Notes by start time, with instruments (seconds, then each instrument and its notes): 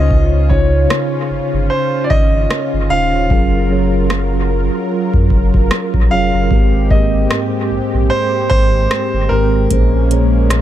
Already playing: sub bass C#2, tine electric piano C#3 C#4 D#4 F4 C5, analog synth pad C#3 C#4 F4, grand piano D#5
0.11 kick
0.49 tine electric piano C#3 C#4 D#4 F4 C#5, grand piano C#5, kick
0.90 cross-stick
1.30 sub bass G1
1.54 sub bass G1
1.70 grand piano C5
2.04 grand piano D5
2.10 sub bass G#1, grand piano D#5, kick
2.51 cross-stick
2.73 sub bass G1
2.90 sub bass D#1, tine electric piano C#3 C#4 D#4 F4 C5, grand piano F5
3.29 sub bass F#1, tine electric piano F#3 C#4 F4 G#4 A#4, analog synth pad F#3 A#4, kick
3.69 tine electric piano F#3 C#4 F4 G#4 C#5
4.10 cross-stick
5.14 sub bass F#2, kick
5.30 sub bass F#1, kick
5.54 sub bass F#1, kick
5.71 cross-stick
5.94 sub bass A#1, kick
6.10 sub bass F1, tine electric piano F#3 C#4 F4 G#4 C#5, grand piano F5
6.34 sub bass F#1
6.50 sub bass G#1, tine electric piano G#2 G#3 C4 G4 A#4, analog synth pad G#3 C4 G4, kick
6.90 tine electric piano G#2 G#3 A#3 G4 A#4, grand piano D#5, kick
6.98 tine electric piano C4
7.31 cross-stick
7.71 sub bass A#1
7.94 sub bass A#1
8.10 grand piano C5
8.50 sub bass G#1, grand piano C5, kick
8.91 cross-stick
9.14 sub bass G1
9.29 sub bass G#1, tine electric piano G#2 G#3 C4 G4 A#4, grand piano A#4
9.69 sub bass A#1, tine electric piano A#2 A#3 C#4 G#4 C5, analog synth pad G#3 A#3 C#4, kick, closed hi-hat
10.10 tine electric piano A#2 A#3 C#4 G#4 C#5, closed hi-hat
10.50 cross-stick, closed hi-hat